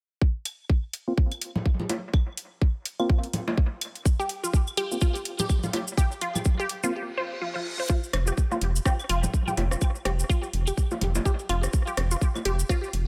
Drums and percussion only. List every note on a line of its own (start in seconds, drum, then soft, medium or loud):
0.21 kick loud
0.45 closed hi-hat medium
0.45 claves medium
0.70 kick medium
0.93 closed hi-hat medium
1.18 kick loud
1.32 closed hi-hat soft
1.32 claves medium
1.41 closed hi-hat medium
1.56 low conga medium
1.66 kick medium
1.80 low conga medium
1.89 closed hi-hat medium
1.89 low bongo medium
2.14 kick loud
2.14 claves medium
2.37 closed hi-hat medium
2.62 kick loud
2.85 closed hi-hat medium
3.00 claves medium
3.10 kick loud
3.23 closed hi-hat soft
3.33 closed hi-hat medium
3.33 low conga medium
3.48 low bongo medium
3.58 kick loud
3.81 closed hi-hat medium
3.81 claves medium
3.95 closed hi-hat soft
4.05 kick loud
4.05 maracas medium
4.20 maracas soft
4.29 closed hi-hat medium
4.44 maracas medium
4.53 kick loud
4.53 maracas medium
4.67 claves medium
4.67 maracas soft
4.77 closed hi-hat medium
4.92 maracas medium
5.01 kick loud
5.01 maracas medium
5.15 closed hi-hat soft
5.15 maracas soft
5.25 closed hi-hat medium
5.39 low conga medium
5.39 maracas medium
5.49 kick loud
5.49 claves medium
5.49 maracas medium
5.63 low conga medium
5.63 maracas soft
5.73 closed hi-hat medium
5.73 low bongo medium
5.88 maracas medium
5.97 kick loud
5.97 maracas medium
6.12 maracas soft
6.21 closed hi-hat medium
6.35 low conga medium
6.35 claves medium
6.35 maracas medium
6.45 kick loud
6.45 maracas medium
6.60 maracas soft
6.69 closed hi-hat medium
6.83 maracas medium
7.89 kick loud
7.89 maracas medium
8.04 maracas soft
8.13 cross-stick medium
8.13 closed hi-hat medium
8.13 claves medium
8.27 maracas medium
8.37 kick loud
8.37 maracas medium
8.52 low bongo soft
8.52 maracas soft
8.61 closed hi-hat medium
8.76 maracas medium
8.85 kick loud
8.85 cross-stick medium
8.85 maracas medium
8.99 claves medium
8.99 maracas soft
9.09 closed hi-hat medium
9.23 low conga medium
9.23 maracas medium
9.34 kick loud
9.34 maracas medium
9.47 low conga medium
9.47 maracas soft
9.57 closed hi-hat medium
9.57 low bongo medium
9.71 cross-stick medium
9.71 maracas medium
9.81 kick loud
9.81 claves medium
9.81 maracas medium
9.95 maracas soft
10.05 cross-stick medium
10.05 closed hi-hat medium
10.19 maracas medium
10.29 kick loud
10.29 maracas medium
10.43 maracas soft
10.53 closed hi-hat medium
10.67 claves medium
10.67 maracas medium
10.77 kick loud
10.77 maracas medium
10.91 low bongo medium
10.91 maracas soft
11.01 closed hi-hat medium
11.01 low conga medium
11.15 low bongo medium
11.15 maracas medium
11.25 kick loud
11.25 maracas medium
11.39 maracas soft
11.49 closed hi-hat medium
11.49 claves medium
11.63 cross-stick medium
11.63 maracas medium
11.73 kick loud
11.73 maracas medium
11.87 maracas soft
11.97 cross-stick medium
11.97 closed hi-hat medium
12.11 maracas medium
12.21 kick loud
12.21 maracas medium
12.35 low bongo soft
12.35 claves medium
12.35 maracas soft
12.45 closed hi-hat medium
12.59 maracas medium
12.69 kick loud
12.69 cross-stick medium
12.69 maracas medium
12.83 maracas soft
12.93 closed hi-hat medium